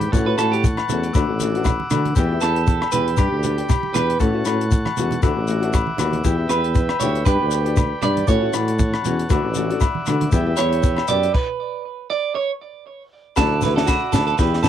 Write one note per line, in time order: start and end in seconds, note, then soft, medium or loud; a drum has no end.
0.00 0.11 G5 medium
0.00 0.11 B5 medium
0.00 0.11 D6 medium
0.00 closed hi-hat medium
0.00 high conga medium
0.12 0.34 A2 loud
0.12 0.27 E3 medium
0.12 0.27 A3 medium
0.12 0.27 C#4 medium
0.12 0.25 F#4 medium
0.12 2.15 F#5 medium
0.12 1.13 A5 medium
0.12 1.14 C#6 medium
0.12 muted clean electric guitar stroke medium
0.12 kick medium
0.12 closed hi-hat soft
0.12 shekere medium
0.26 0.39 A3 soft
0.26 0.39 C#4 soft
0.26 0.38 F#4 medium
0.26 0.37 B4 medium
0.38 0.80 A2 medium
0.38 0.55 E3 medium
0.38 0.55 A3 medium
0.38 0.56 C#4 medium
0.38 0.56 F#4 medium
0.38 0.51 A4 medium
0.38 cross-stick medium
0.38 closed hi-hat soft
0.38 low agogo medium
0.38 shekere medium
0.51 0.63 G4 medium
0.51 closed hi-hat medium
0.63 kick medium
0.63 closed hi-hat medium
0.63 high conga medium
0.63 shekere medium
0.77 cross-stick medium
0.77 low agogo medium
0.89 1.10 E2 medium
0.89 1.06 E3 medium
0.89 1.06 A3 medium
0.89 1.07 C#4 medium
0.89 1.07 F#4 medium
0.89 closed hi-hat soft
0.89 low conga medium
0.89 shekere medium
1.03 closed hi-hat soft
1.13 1.27 D2 loud
1.13 1.32 E3 medium
1.13 1.32 A3 medium
1.13 2.15 D6 medium
1.13 2.14 E6 medium
1.13 kick medium
1.13 cross-stick medium
1.13 closed hi-hat soft
1.13 low agogo medium
1.13 shekere medium
1.17 1.32 D4 medium
1.17 1.32 F#4 medium
1.28 1.80 A1 medium
1.40 1.55 E3 medium
1.40 1.55 A3 medium
1.40 1.55 D4 medium
1.40 1.54 F#4 medium
1.40 closed hi-hat soft
1.40 high conga medium
1.40 shekere medium
1.55 1.70 A3 soft
1.55 1.70 D4 medium
1.55 1.69 F#4 medium
1.55 closed hi-hat soft
1.65 kick medium
1.65 cross-stick medium
1.65 closed hi-hat soft
1.65 low conga medium
1.65 low agogo medium
1.65 shekere medium
1.80 high conga medium
1.90 2.12 D3 medium
1.90 2.08 E3 medium
1.90 2.08 A3 medium
1.90 2.09 D4 medium
1.90 2.09 F#4 medium
1.90 cross-stick medium
1.90 closed hi-hat soft
1.90 low conga medium
1.90 low agogo medium
1.90 shekere medium
2.06 closed hi-hat soft
2.06 high conga medium
2.15 2.38 E2 loud
2.15 2.31 E3 medium
2.15 2.31 B3 medium
2.15 2.32 E4 medium
2.15 2.31 G4 loud
2.15 4.18 G5 medium
2.15 4.18 B5 medium
2.15 3.17 E6 medium
2.15 kick medium
2.15 closed hi-hat soft
2.15 shekere medium
2.32 2.42 B3 soft
2.32 2.43 E4 soft
2.32 2.43 G4 medium
2.41 2.85 E2 medium
2.41 2.59 E3 medium
2.41 2.59 B3 medium
2.41 2.59 E4 medium
2.41 2.60 G4 medium
2.41 2.89 A4 medium
2.41 cross-stick medium
2.41 closed hi-hat soft
2.41 low agogo medium
2.41 shekere medium
2.56 closed hi-hat medium
2.67 kick medium
2.67 closed hi-hat soft
2.67 high conga medium
2.67 shekere medium
2.82 cross-stick medium
2.82 low agogo medium
2.92 3.14 E2 medium
2.92 3.09 E3 medium
2.92 3.09 B3 medium
2.92 3.10 E4 medium
2.92 3.10 G4 medium
2.92 3.17 B4 medium
2.92 closed hi-hat medium
2.92 low conga medium
2.92 shekere medium
3.08 closed hi-hat medium
3.17 3.30 G2 medium
3.17 3.35 B3 medium
3.17 3.35 D4 medium
3.17 3.91 G4 medium
3.17 3.35 G4 medium
3.17 4.19 D6 medium
3.17 kick medium
3.17 cross-stick medium
3.17 closed hi-hat medium
3.17 low agogo medium
3.17 shekere loud
3.32 3.62 D2 medium
3.43 3.58 B3 medium
3.43 3.59 D4 medium
3.43 3.57 G4 medium
3.43 closed hi-hat medium
3.43 low conga medium
3.43 shekere medium
3.58 3.74 D4 soft
3.58 3.72 G4 medium
3.58 closed hi-hat medium
3.69 kick medium
3.69 cross-stick medium
3.69 closed hi-hat soft
3.69 low conga medium
3.69 low agogo medium
3.69 shekere medium
3.83 high conga medium
3.94 4.16 E2 medium
3.94 4.11 B3 soft
3.94 4.12 D4 medium
3.94 4.12 G4 medium
3.94 4.20 B4 loud
3.94 cross-stick medium
3.94 closed hi-hat medium
3.94 low conga medium
3.94 low agogo medium
3.94 shekere medium
4.10 closed hi-hat medium
4.19 4.42 A2 loud
4.19 4.34 E3 medium
4.19 4.34 A3 medium
4.19 4.34 C#4 medium
4.19 4.32 F#4 medium
4.19 5.21 F#5 medium
4.19 5.21 A5 medium
4.19 5.21 C#6 medium
4.19 muted clean electric guitar stroke medium
4.19 kick medium
4.19 closed hi-hat soft
4.19 shekere medium
4.34 4.45 A3 soft
4.34 4.46 C#4 soft
4.34 4.46 F#4 medium
4.45 4.88 A2 medium
4.45 4.63 A3 medium
4.45 4.63 C#4 medium
4.45 4.63 F#4 medium
4.45 muted nylon-string guitar stroke medium
4.45 cross-stick medium
4.45 closed hi-hat soft
4.45 low agogo medium
4.45 shekere medium
4.61 closed hi-hat medium
4.71 kick medium
4.71 closed hi-hat soft
4.71 high conga medium
4.71 shekere medium
4.85 cross-stick medium
4.85 high conga medium
4.85 low agogo medium
4.96 5.18 E2 medium
4.96 5.13 E3 medium
4.96 5.14 A3 medium
4.96 5.14 C#4 medium
4.96 5.14 F#4 medium
4.96 closed hi-hat medium
4.96 low conga medium
4.96 shekere medium
5.11 closed hi-hat soft
5.11 low conga medium
5.22 5.35 D2 medium
5.22 5.39 E3 medium
5.22 5.39 A3 medium
5.22 5.39 D4 medium
5.22 5.39 F#4 medium
5.22 7.25 E5 medium
5.22 6.24 F#5 medium
5.22 6.24 D6 medium
5.22 kick medium
5.22 cross-stick medium
5.22 closed hi-hat medium
5.22 low agogo medium
5.22 shekere medium
5.36 5.88 A1 loud
5.47 5.62 E3 medium
5.47 5.62 A3 medium
5.47 5.61 D4 medium
5.47 5.60 F#4 medium
5.47 closed hi-hat soft
5.47 shekere medium
5.61 5.77 A3 soft
5.61 5.76 D4 medium
5.61 5.76 F#4 medium
5.61 closed hi-hat soft
5.73 kick medium
5.73 cross-stick medium
5.73 closed hi-hat soft
5.73 low conga medium
5.73 low agogo medium
5.73 shekere medium
5.87 high conga medium
5.98 6.20 D#2 medium
5.98 6.15 E3 medium
5.98 6.15 A3 medium
5.98 6.16 D4 medium
5.98 6.16 F#4 medium
5.98 cross-stick medium
5.98 closed hi-hat soft
5.98 low conga medium
5.98 low agogo medium
5.98 shekere medium
6.13 closed hi-hat soft
6.13 high conga medium
6.24 6.46 E2 medium
6.24 6.38 E3 medium
6.24 6.38 B3 medium
6.24 6.37 E4 loud
6.24 6.37 G4 medium
6.24 7.25 G5 medium
6.24 8.26 B5 medium
6.24 kick medium
6.24 closed hi-hat soft
6.24 shekere medium
6.38 6.50 B3 soft
6.38 6.50 E4 soft
6.38 6.50 G4 medium
6.49 6.92 E2 medium
6.49 6.66 E3 medium
6.49 6.67 B3 medium
6.49 6.67 E4 medium
6.49 6.67 G4 medium
6.49 6.97 B4 medium
6.49 cross-stick medium
6.49 closed hi-hat medium
6.49 low agogo medium
6.49 shekere medium
6.64 closed hi-hat soft
6.75 kick medium
6.75 closed hi-hat soft
6.75 high conga medium
6.75 shekere medium
6.89 cross-stick medium
6.89 low agogo medium
7.00 7.22 D2 medium
7.00 7.17 E3 medium
7.00 7.18 B3 medium
7.00 7.18 E4 medium
7.00 7.18 G4 medium
7.00 7.25 C#5 loud
7.00 closed hi-hat medium
7.00 low conga medium
7.00 shekere medium
7.15 closed hi-hat soft
7.25 7.38 G2 loud
7.25 7.43 B3 medium
7.25 7.43 D4 medium
7.25 7.43 G4 medium
7.25 7.98 B4 medium
7.25 8.27 D5 medium
7.25 8.27 G5 medium
7.25 kick medium
7.25 cross-stick medium
7.25 closed hi-hat soft
7.25 low agogo medium
7.25 shekere medium
7.41 7.93 D2 loud
7.51 7.65 B3 medium
7.51 7.66 D4 medium
7.51 7.64 G4 medium
7.51 closed hi-hat soft
7.51 shekere medium
7.65 7.81 D4 soft
7.65 7.80 G4 medium
7.65 closed hi-hat soft
7.76 kick medium
7.76 cross-stick medium
7.76 closed hi-hat soft
7.76 low conga medium
7.76 low agogo medium
7.76 shekere medium
8.02 8.24 G2 medium
8.02 8.19 B3 medium
8.02 8.19 D4 medium
8.02 8.28 D5 loud
8.02 muted nylon-string guitar stroke medium
8.02 cross-stick medium
8.02 closed hi-hat medium
8.02 low conga medium
8.02 low agogo medium
8.02 shekere medium
8.17 closed hi-hat medium
8.17 high conga medium
8.27 8.49 A2 loud
8.27 8.42 E3 medium
8.27 8.42 A3 medium
8.27 8.41 C#4 medium
8.27 8.40 F#4 medium
8.27 9.29 C#5 medium
8.27 8.53 C#5 medium
8.27 10.30 F#5 medium
8.27 9.29 A5 medium
8.27 kick medium
8.27 closed hi-hat soft
8.27 shekere medium
8.41 8.52 A3 soft
8.41 8.53 C#4 soft
8.41 8.53 F#4 soft
8.53 8.96 A2 loud
8.53 8.70 E3 medium
8.53 8.70 A3 medium
8.53 8.71 F#4 medium
8.53 muted nylon-string guitar stroke medium
8.53 cross-stick medium
8.53 closed hi-hat medium
8.53 low agogo medium
8.53 shekere medium
8.68 closed hi-hat medium
8.79 kick loud
8.79 closed hi-hat medium
8.79 high conga medium
8.79 shekere loud
8.93 cross-stick medium
8.93 low agogo medium
9.04 9.25 E2 medium
9.04 9.21 E3 medium
9.04 9.22 C#4 medium
9.04 9.22 F#4 medium
9.04 muted nylon-string guitar stroke medium
9.04 closed hi-hat medium
9.04 low conga medium
9.04 shekere medium
9.19 closed hi-hat medium
9.29 9.42 D2 loud
9.29 9.46 E3 medium
9.29 9.46 A3 medium
9.29 9.47 D4 medium
9.29 9.47 F#4 medium
9.29 10.32 D5 medium
9.29 11.33 E5 medium
9.29 kick medium
9.29 cross-stick medium
9.29 closed hi-hat medium
9.29 low agogo medium
9.29 shekere medium
9.44 9.74 A1 medium
9.54 9.70 E3 medium
9.54 9.70 A3 medium
9.54 9.70 D4 medium
9.54 9.68 F#4 medium
9.54 closed hi-hat soft
9.54 high conga medium
9.54 shekere medium
9.70 9.85 A3 soft
9.70 9.85 D4 medium
9.70 9.84 F#4 medium
9.70 closed hi-hat medium
9.81 kick medium
9.81 cross-stick medium
9.81 closed hi-hat soft
9.81 low conga medium
9.81 low agogo medium
9.81 shekere medium
9.95 high conga medium
10.06 10.28 D3 medium
10.06 10.23 E3 medium
10.06 10.24 A3 medium
10.06 10.24 D4 medium
10.06 10.24 F#4 medium
10.06 cross-stick medium
10.06 closed hi-hat medium
10.06 low conga medium
10.06 low agogo medium
10.06 shekere medium
10.21 closed hi-hat medium
10.21 high conga medium
10.32 10.53 E2 loud
10.32 10.46 G3 medium
10.32 10.47 B3 medium
10.32 10.46 E4 medium
10.32 10.45 G4 medium
10.32 11.33 B4 medium
10.32 11.33 G5 medium
10.32 kick medium
10.32 closed hi-hat soft
10.32 shekere medium
10.46 10.58 B3 soft
10.46 10.58 E4 soft
10.46 10.58 G4 medium
10.57 11.00 E2 medium
10.57 10.74 G3 medium
10.57 10.75 B3 medium
10.57 10.75 E4 medium
10.57 10.75 G4 medium
10.57 11.05 C#5 loud
10.57 cross-stick medium
10.57 closed hi-hat medium
10.57 low agogo medium
10.57 shekere medium
10.72 closed hi-hat medium
10.83 kick medium
10.83 closed hi-hat soft
10.83 high conga medium
10.83 shekere loud
10.97 cross-stick medium
10.97 low agogo medium
11.08 11.30 F#2 medium
11.08 11.25 B3 medium
11.08 11.26 E4 medium
11.08 11.26 G4 medium
11.08 11.33 D5 loud
11.08 muted nylon-string guitar stroke medium
11.08 closed hi-hat soft
11.08 low conga medium
11.08 shekere medium
11.23 closed hi-hat medium
11.34 12.06 B4 medium
11.34 kick medium
11.34 crash medium
12.10 12.35 D5 loud
12.35 12.51 C#5 medium
13.36 14.01 D2 loud
13.36 13.53 F#3 medium
13.36 13.54 A3 medium
13.36 13.54 E4 medium
13.36 13.61 A4 medium
13.36 14.38 D5 medium
13.36 14.69 E5 medium
13.36 14.38 F#5 medium
13.36 kick loud
13.36 snare medium
13.36 low conga medium
13.36 low agogo medium
13.36 shekere medium
13.62 13.77 F#3 medium
13.62 13.77 A3 medium
13.62 13.76 B4 medium
13.62 snare soft
13.62 high conga medium
13.62 low conga medium
13.62 shekere loud
13.66 13.75 E4 medium
13.76 13.92 A3 medium
13.76 13.91 E4 medium
13.76 13.87 A4 medium
13.76 snare medium
13.87 14.12 F#4 medium
13.87 kick medium
13.87 snare medium
13.87 low agogo medium
13.87 shekere medium
14.12 14.34 D2 medium
14.12 14.26 A4 medium
14.12 snare medium
14.12 high conga medium
14.12 low conga medium
14.12 low agogo medium
14.12 shekere loud
14.27 14.37 A4 medium
14.27 shekere soft
14.38 14.69 E2 loud
14.38 14.55 E3 medium
14.38 14.56 B3 medium
14.38 14.56 E4 medium
14.38 14.56 G4 medium
14.38 14.62 B4 medium
14.38 14.69 B4 medium
14.38 14.69 G5 medium
14.38 kick loud
14.38 snare soft
14.38 shekere medium
14.53 snare soft
14.63 14.69 E3 medium
14.63 14.69 B3 medium
14.63 14.69 E4 medium
14.63 14.69 A4 medium
14.63 snare medium
14.63 high conga medium
14.63 low agogo medium
14.63 shekere medium